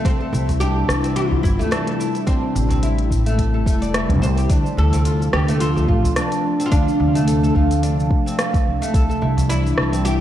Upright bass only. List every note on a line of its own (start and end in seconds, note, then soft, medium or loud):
0.05 0.18 C2 medium
0.33 0.85 C2 loud
0.88 1.41 C2 medium
1.44 1.57 G1 loud
2.27 2.40 A1 loud
2.55 3.07 A1 loud
3.11 3.66 A1 medium
3.66 4.05 E1 medium
4.09 4.22 E1 medium
4.22 4.45 C2 medium
4.50 4.62 D2 medium
4.77 5.29 D2 loud
5.33 5.85 D2 medium
5.89 6.01 A1 loud
6.72 6.85 D2 loud
7.00 7.52 D2 loud
7.55 8.07 D2 medium
8.66 8.79 C2 medium
8.94 9.07 C2 medium
9.22 9.74 C2 loud
9.78 10.21 C2 medium